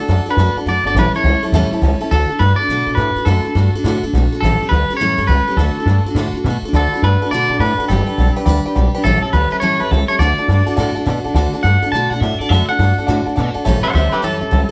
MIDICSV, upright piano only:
0, 0, Header, 1, 2, 480
1, 0, Start_track
1, 0, Key_signature, 2, "major"
1, 0, Tempo, 288739
1, 1593, Time_signature, 4, 2, 24, 8
1, 24456, End_track
2, 0, Start_track
2, 0, Title_t, "Upright piano"
2, 0, Program_c, 0, 0
2, 155, Note_on_c, 0, 74, 87
2, 162, Note_on_c, 0, 81, 97
2, 164, Note_on_c, 0, 78, 84
2, 335, Note_off_c, 0, 74, 0
2, 339, Note_off_c, 0, 81, 0
2, 340, Note_off_c, 0, 78, 0
2, 473, Note_on_c, 0, 74, 73
2, 478, Note_on_c, 0, 78, 65
2, 484, Note_on_c, 0, 81, 86
2, 569, Note_off_c, 0, 74, 0
2, 571, Note_off_c, 0, 78, 0
2, 574, Note_off_c, 0, 81, 0
2, 653, Note_on_c, 0, 74, 87
2, 656, Note_on_c, 0, 78, 82
2, 661, Note_on_c, 0, 81, 103
2, 825, Note_off_c, 0, 74, 0
2, 827, Note_off_c, 0, 78, 0
2, 829, Note_off_c, 0, 81, 0
2, 942, Note_on_c, 0, 74, 73
2, 952, Note_on_c, 0, 78, 68
2, 953, Note_on_c, 0, 81, 84
2, 1044, Note_off_c, 0, 74, 0
2, 1049, Note_off_c, 0, 78, 0
2, 1049, Note_off_c, 0, 81, 0
2, 1109, Note_on_c, 0, 74, 79
2, 1116, Note_on_c, 0, 78, 72
2, 1121, Note_on_c, 0, 81, 82
2, 1294, Note_off_c, 0, 74, 0
2, 1297, Note_off_c, 0, 78, 0
2, 1300, Note_off_c, 0, 81, 0
2, 1418, Note_on_c, 0, 74, 75
2, 1431, Note_on_c, 0, 78, 69
2, 1431, Note_on_c, 0, 81, 88
2, 1523, Note_off_c, 0, 74, 0
2, 1529, Note_off_c, 0, 78, 0
2, 1529, Note_off_c, 0, 81, 0
2, 1599, Note_on_c, 0, 73, 105
2, 1606, Note_on_c, 0, 76, 87
2, 1617, Note_on_c, 0, 81, 106
2, 1780, Note_off_c, 0, 73, 0
2, 1783, Note_off_c, 0, 76, 0
2, 1788, Note_off_c, 0, 81, 0
2, 1913, Note_on_c, 0, 76, 70
2, 1923, Note_on_c, 0, 81, 85
2, 2011, Note_off_c, 0, 76, 0
2, 2016, Note_off_c, 0, 81, 0
2, 2078, Note_on_c, 0, 73, 74
2, 2081, Note_on_c, 0, 76, 69
2, 2090, Note_on_c, 0, 81, 80
2, 2260, Note_off_c, 0, 73, 0
2, 2261, Note_off_c, 0, 76, 0
2, 2266, Note_off_c, 0, 81, 0
2, 2386, Note_on_c, 0, 73, 76
2, 2390, Note_on_c, 0, 76, 68
2, 2401, Note_on_c, 0, 81, 78
2, 2488, Note_off_c, 0, 73, 0
2, 2490, Note_off_c, 0, 76, 0
2, 2495, Note_off_c, 0, 81, 0
2, 2558, Note_on_c, 0, 73, 104
2, 2563, Note_on_c, 0, 76, 99
2, 2569, Note_on_c, 0, 81, 117
2, 2740, Note_off_c, 0, 73, 0
2, 2743, Note_off_c, 0, 76, 0
2, 2746, Note_off_c, 0, 81, 0
2, 2876, Note_on_c, 0, 73, 86
2, 2883, Note_on_c, 0, 76, 81
2, 2887, Note_on_c, 0, 81, 97
2, 2974, Note_off_c, 0, 73, 0
2, 2977, Note_off_c, 0, 76, 0
2, 2979, Note_off_c, 0, 81, 0
2, 3046, Note_on_c, 0, 73, 91
2, 3050, Note_on_c, 0, 76, 86
2, 3051, Note_on_c, 0, 81, 102
2, 3225, Note_off_c, 0, 73, 0
2, 3227, Note_off_c, 0, 76, 0
2, 3227, Note_off_c, 0, 81, 0
2, 3344, Note_on_c, 0, 73, 87
2, 3348, Note_on_c, 0, 76, 83
2, 3349, Note_on_c, 0, 81, 102
2, 3448, Note_off_c, 0, 73, 0
2, 3450, Note_off_c, 0, 76, 0
2, 3450, Note_off_c, 0, 81, 0
2, 11213, Note_on_c, 0, 78, 87
2, 11215, Note_on_c, 0, 74, 100
2, 11216, Note_on_c, 0, 81, 107
2, 11391, Note_off_c, 0, 78, 0
2, 11392, Note_off_c, 0, 74, 0
2, 11393, Note_off_c, 0, 81, 0
2, 11509, Note_on_c, 0, 74, 68
2, 11512, Note_on_c, 0, 78, 62
2, 11522, Note_on_c, 0, 83, 78
2, 11613, Note_off_c, 0, 74, 0
2, 11614, Note_off_c, 0, 78, 0
2, 11619, Note_off_c, 0, 83, 0
2, 11696, Note_on_c, 0, 81, 84
2, 11872, Note_off_c, 0, 81, 0
2, 11992, Note_on_c, 0, 78, 70
2, 11996, Note_on_c, 0, 74, 75
2, 12002, Note_on_c, 0, 81, 85
2, 12094, Note_off_c, 0, 78, 0
2, 12096, Note_off_c, 0, 74, 0
2, 12099, Note_off_c, 0, 81, 0
2, 12167, Note_on_c, 0, 74, 92
2, 12170, Note_on_c, 0, 78, 80
2, 12171, Note_on_c, 0, 81, 99
2, 12347, Note_off_c, 0, 74, 0
2, 12349, Note_off_c, 0, 78, 0
2, 12349, Note_off_c, 0, 81, 0
2, 12458, Note_on_c, 0, 74, 71
2, 12465, Note_on_c, 0, 78, 65
2, 12471, Note_on_c, 0, 81, 79
2, 12567, Note_off_c, 0, 74, 0
2, 12570, Note_off_c, 0, 78, 0
2, 12573, Note_off_c, 0, 81, 0
2, 12630, Note_on_c, 0, 74, 78
2, 12637, Note_on_c, 0, 81, 86
2, 12643, Note_on_c, 0, 78, 72
2, 12818, Note_off_c, 0, 74, 0
2, 12822, Note_off_c, 0, 81, 0
2, 12825, Note_off_c, 0, 78, 0
2, 12918, Note_on_c, 0, 74, 73
2, 12926, Note_on_c, 0, 78, 64
2, 12934, Note_on_c, 0, 81, 80
2, 13036, Note_off_c, 0, 74, 0
2, 13040, Note_off_c, 0, 78, 0
2, 13044, Note_off_c, 0, 81, 0
2, 13100, Note_on_c, 0, 74, 97
2, 13101, Note_on_c, 0, 79, 87
2, 13107, Note_on_c, 0, 83, 114
2, 13293, Note_off_c, 0, 74, 0
2, 13293, Note_off_c, 0, 79, 0
2, 13296, Note_off_c, 0, 83, 0
2, 13407, Note_on_c, 0, 74, 73
2, 13423, Note_on_c, 0, 79, 69
2, 13423, Note_on_c, 0, 83, 78
2, 13520, Note_off_c, 0, 74, 0
2, 13528, Note_off_c, 0, 79, 0
2, 13528, Note_off_c, 0, 83, 0
2, 13587, Note_on_c, 0, 74, 78
2, 13589, Note_on_c, 0, 79, 67
2, 13593, Note_on_c, 0, 83, 83
2, 13776, Note_off_c, 0, 74, 0
2, 13777, Note_off_c, 0, 79, 0
2, 13779, Note_off_c, 0, 83, 0
2, 13897, Note_on_c, 0, 74, 82
2, 13907, Note_on_c, 0, 79, 81
2, 13908, Note_on_c, 0, 83, 96
2, 14005, Note_off_c, 0, 74, 0
2, 14010, Note_off_c, 0, 79, 0
2, 14010, Note_off_c, 0, 83, 0
2, 14053, Note_on_c, 0, 74, 110
2, 14060, Note_on_c, 0, 79, 93
2, 14064, Note_on_c, 0, 83, 119
2, 14248, Note_off_c, 0, 74, 0
2, 14252, Note_off_c, 0, 79, 0
2, 14254, Note_off_c, 0, 83, 0
2, 14390, Note_on_c, 0, 74, 90
2, 14394, Note_on_c, 0, 79, 81
2, 14396, Note_on_c, 0, 83, 95
2, 14491, Note_off_c, 0, 74, 0
2, 14493, Note_off_c, 0, 79, 0
2, 14494, Note_off_c, 0, 83, 0
2, 14550, Note_on_c, 0, 74, 96
2, 14550, Note_on_c, 0, 79, 81
2, 14566, Note_on_c, 0, 83, 102
2, 14736, Note_off_c, 0, 79, 0
2, 14737, Note_off_c, 0, 74, 0
2, 14744, Note_off_c, 0, 83, 0
2, 14871, Note_on_c, 0, 74, 84
2, 14872, Note_on_c, 0, 83, 95
2, 14873, Note_on_c, 0, 79, 86
2, 14971, Note_off_c, 0, 74, 0
2, 14971, Note_off_c, 0, 83, 0
2, 14972, Note_off_c, 0, 79, 0
2, 15034, Note_on_c, 0, 73, 101
2, 15036, Note_on_c, 0, 76, 88
2, 15043, Note_on_c, 0, 81, 115
2, 15218, Note_off_c, 0, 73, 0
2, 15219, Note_off_c, 0, 76, 0
2, 15222, Note_off_c, 0, 81, 0
2, 15327, Note_on_c, 0, 73, 73
2, 15331, Note_on_c, 0, 81, 81
2, 15438, Note_off_c, 0, 73, 0
2, 15440, Note_off_c, 0, 81, 0
2, 15509, Note_on_c, 0, 73, 68
2, 15512, Note_on_c, 0, 76, 67
2, 15517, Note_on_c, 0, 81, 84
2, 15695, Note_off_c, 0, 73, 0
2, 15696, Note_off_c, 0, 76, 0
2, 15699, Note_off_c, 0, 81, 0
2, 15820, Note_on_c, 0, 76, 69
2, 15821, Note_on_c, 0, 73, 76
2, 15825, Note_on_c, 0, 81, 77
2, 15924, Note_off_c, 0, 76, 0
2, 15925, Note_off_c, 0, 73, 0
2, 15927, Note_off_c, 0, 81, 0
2, 16001, Note_on_c, 0, 73, 92
2, 16008, Note_on_c, 0, 76, 86
2, 16008, Note_on_c, 0, 81, 100
2, 16180, Note_off_c, 0, 73, 0
2, 16184, Note_off_c, 0, 76, 0
2, 16184, Note_off_c, 0, 81, 0
2, 16282, Note_on_c, 0, 73, 77
2, 16296, Note_on_c, 0, 81, 83
2, 16297, Note_on_c, 0, 76, 69
2, 16395, Note_off_c, 0, 73, 0
2, 16402, Note_off_c, 0, 76, 0
2, 16402, Note_off_c, 0, 81, 0
2, 16467, Note_on_c, 0, 73, 75
2, 16476, Note_on_c, 0, 76, 67
2, 16480, Note_on_c, 0, 81, 87
2, 16653, Note_off_c, 0, 73, 0
2, 16657, Note_off_c, 0, 76, 0
2, 16659, Note_off_c, 0, 81, 0
2, 16766, Note_on_c, 0, 73, 71
2, 16771, Note_on_c, 0, 76, 70
2, 16779, Note_on_c, 0, 81, 78
2, 16876, Note_off_c, 0, 73, 0
2, 16879, Note_off_c, 0, 76, 0
2, 16883, Note_off_c, 0, 81, 0
2, 16941, Note_on_c, 0, 74, 93
2, 16946, Note_on_c, 0, 78, 92
2, 16954, Note_on_c, 0, 81, 102
2, 17130, Note_off_c, 0, 74, 0
2, 17132, Note_off_c, 0, 78, 0
2, 17136, Note_off_c, 0, 81, 0
2, 17260, Note_on_c, 0, 74, 73
2, 17260, Note_on_c, 0, 78, 66
2, 17260, Note_on_c, 0, 81, 78
2, 17363, Note_off_c, 0, 74, 0
2, 17363, Note_off_c, 0, 78, 0
2, 17363, Note_off_c, 0, 81, 0
2, 17423, Note_on_c, 0, 74, 72
2, 17431, Note_on_c, 0, 78, 66
2, 17437, Note_on_c, 0, 81, 81
2, 17610, Note_off_c, 0, 74, 0
2, 17614, Note_off_c, 0, 78, 0
2, 17617, Note_off_c, 0, 81, 0
2, 17721, Note_on_c, 0, 74, 85
2, 17724, Note_on_c, 0, 81, 97
2, 17731, Note_on_c, 0, 78, 75
2, 17833, Note_off_c, 0, 74, 0
2, 17835, Note_off_c, 0, 81, 0
2, 17838, Note_off_c, 0, 78, 0
2, 17893, Note_on_c, 0, 74, 113
2, 17897, Note_on_c, 0, 78, 99
2, 17904, Note_on_c, 0, 81, 119
2, 18085, Note_off_c, 0, 74, 0
2, 18087, Note_off_c, 0, 78, 0
2, 18090, Note_off_c, 0, 81, 0
2, 18200, Note_on_c, 0, 74, 88
2, 18201, Note_on_c, 0, 78, 78
2, 18205, Note_on_c, 0, 81, 94
2, 18312, Note_off_c, 0, 74, 0
2, 18313, Note_off_c, 0, 78, 0
2, 18315, Note_off_c, 0, 81, 0
2, 18371, Note_on_c, 0, 74, 94
2, 18384, Note_on_c, 0, 78, 85
2, 18394, Note_on_c, 0, 81, 99
2, 18563, Note_off_c, 0, 74, 0
2, 18570, Note_off_c, 0, 78, 0
2, 18575, Note_off_c, 0, 81, 0
2, 18689, Note_on_c, 0, 74, 85
2, 18698, Note_on_c, 0, 78, 75
2, 18710, Note_on_c, 0, 81, 99
2, 18797, Note_off_c, 0, 74, 0
2, 18801, Note_off_c, 0, 78, 0
2, 18807, Note_off_c, 0, 81, 0
2, 18855, Note_on_c, 0, 74, 110
2, 18863, Note_on_c, 0, 78, 104
2, 18874, Note_on_c, 0, 81, 124
2, 19045, Note_off_c, 0, 74, 0
2, 19049, Note_off_c, 0, 78, 0
2, 19055, Note_off_c, 0, 81, 0
2, 19170, Note_on_c, 0, 74, 78
2, 19177, Note_on_c, 0, 78, 73
2, 19193, Note_on_c, 0, 81, 87
2, 19277, Note_off_c, 0, 74, 0
2, 19280, Note_off_c, 0, 78, 0
2, 19288, Note_off_c, 0, 81, 0
2, 19361, Note_on_c, 0, 78, 68
2, 19369, Note_on_c, 0, 81, 76
2, 19538, Note_off_c, 0, 78, 0
2, 19542, Note_off_c, 0, 81, 0
2, 19658, Note_on_c, 0, 74, 70
2, 19663, Note_on_c, 0, 78, 62
2, 19677, Note_on_c, 0, 81, 78
2, 19760, Note_off_c, 0, 74, 0
2, 19763, Note_off_c, 0, 78, 0
2, 19770, Note_off_c, 0, 81, 0
2, 19834, Note_on_c, 0, 74, 94
2, 19845, Note_on_c, 0, 78, 84
2, 19851, Note_on_c, 0, 81, 104
2, 20014, Note_off_c, 0, 74, 0
2, 20020, Note_off_c, 0, 78, 0
2, 20023, Note_off_c, 0, 81, 0
2, 20143, Note_on_c, 0, 78, 67
2, 20146, Note_on_c, 0, 74, 78
2, 20157, Note_on_c, 0, 81, 82
2, 20243, Note_off_c, 0, 78, 0
2, 20244, Note_off_c, 0, 74, 0
2, 20250, Note_off_c, 0, 81, 0
2, 20299, Note_on_c, 0, 74, 77
2, 20306, Note_on_c, 0, 78, 73
2, 20313, Note_on_c, 0, 81, 82
2, 20487, Note_off_c, 0, 74, 0
2, 20490, Note_off_c, 0, 78, 0
2, 20494, Note_off_c, 0, 81, 0
2, 20624, Note_on_c, 0, 74, 76
2, 20631, Note_on_c, 0, 81, 81
2, 20635, Note_on_c, 0, 78, 70
2, 20723, Note_off_c, 0, 74, 0
2, 20727, Note_off_c, 0, 81, 0
2, 20729, Note_off_c, 0, 78, 0
2, 20787, Note_on_c, 0, 78, 93
2, 20788, Note_on_c, 0, 74, 90
2, 20802, Note_on_c, 0, 81, 114
2, 20971, Note_off_c, 0, 74, 0
2, 20971, Note_off_c, 0, 78, 0
2, 20978, Note_off_c, 0, 81, 0
2, 21097, Note_on_c, 0, 74, 71
2, 21107, Note_on_c, 0, 78, 66
2, 21108, Note_on_c, 0, 81, 75
2, 21200, Note_off_c, 0, 74, 0
2, 21204, Note_off_c, 0, 78, 0
2, 21205, Note_off_c, 0, 81, 0
2, 21266, Note_on_c, 0, 74, 78
2, 21270, Note_on_c, 0, 81, 84
2, 21450, Note_off_c, 0, 74, 0
2, 21452, Note_off_c, 0, 81, 0
2, 21577, Note_on_c, 0, 78, 68
2, 21578, Note_on_c, 0, 74, 74
2, 21586, Note_on_c, 0, 81, 77
2, 21680, Note_off_c, 0, 74, 0
2, 21680, Note_off_c, 0, 78, 0
2, 21684, Note_off_c, 0, 81, 0
2, 21721, Note_on_c, 0, 74, 107
2, 21722, Note_on_c, 0, 78, 102
2, 21731, Note_on_c, 0, 81, 119
2, 21917, Note_off_c, 0, 74, 0
2, 21918, Note_off_c, 0, 78, 0
2, 21923, Note_off_c, 0, 81, 0
2, 22034, Note_on_c, 0, 74, 83
2, 22043, Note_on_c, 0, 78, 81
2, 22044, Note_on_c, 0, 81, 100
2, 22148, Note_off_c, 0, 74, 0
2, 22152, Note_off_c, 0, 78, 0
2, 22153, Note_off_c, 0, 81, 0
2, 22201, Note_on_c, 0, 74, 91
2, 22210, Note_on_c, 0, 78, 89
2, 22220, Note_on_c, 0, 81, 106
2, 22398, Note_off_c, 0, 74, 0
2, 22402, Note_off_c, 0, 78, 0
2, 22407, Note_off_c, 0, 81, 0
2, 22513, Note_on_c, 0, 74, 84
2, 22522, Note_on_c, 0, 81, 97
2, 22523, Note_on_c, 0, 78, 78
2, 22627, Note_off_c, 0, 74, 0
2, 22632, Note_off_c, 0, 78, 0
2, 22632, Note_off_c, 0, 81, 0
2, 22683, Note_on_c, 0, 73, 116
2, 22687, Note_on_c, 0, 76, 100
2, 22689, Note_on_c, 0, 81, 119
2, 22878, Note_off_c, 0, 73, 0
2, 22880, Note_off_c, 0, 76, 0
2, 22881, Note_off_c, 0, 81, 0
2, 23000, Note_on_c, 0, 76, 67
2, 23001, Note_on_c, 0, 73, 71
2, 23005, Note_on_c, 0, 81, 78
2, 23111, Note_off_c, 0, 73, 0
2, 23111, Note_off_c, 0, 76, 0
2, 23114, Note_off_c, 0, 81, 0
2, 23470, Note_on_c, 0, 73, 75
2, 23473, Note_on_c, 0, 76, 71
2, 23479, Note_on_c, 0, 81, 80
2, 23586, Note_off_c, 0, 73, 0
2, 23587, Note_off_c, 0, 76, 0
2, 23591, Note_off_c, 0, 81, 0
2, 23640, Note_on_c, 0, 73, 95
2, 23646, Note_on_c, 0, 76, 90
2, 23646, Note_on_c, 0, 81, 102
2, 23837, Note_off_c, 0, 73, 0
2, 23840, Note_off_c, 0, 76, 0
2, 23840, Note_off_c, 0, 81, 0
2, 23950, Note_on_c, 0, 76, 72
2, 23951, Note_on_c, 0, 73, 74
2, 23963, Note_on_c, 0, 81, 86
2, 24066, Note_off_c, 0, 73, 0
2, 24066, Note_off_c, 0, 76, 0
2, 24073, Note_off_c, 0, 81, 0
2, 24133, Note_on_c, 0, 73, 77
2, 24139, Note_on_c, 0, 81, 85
2, 24141, Note_on_c, 0, 76, 68
2, 24323, Note_off_c, 0, 73, 0
2, 24326, Note_off_c, 0, 81, 0
2, 24327, Note_off_c, 0, 76, 0
2, 24456, End_track
0, 0, End_of_file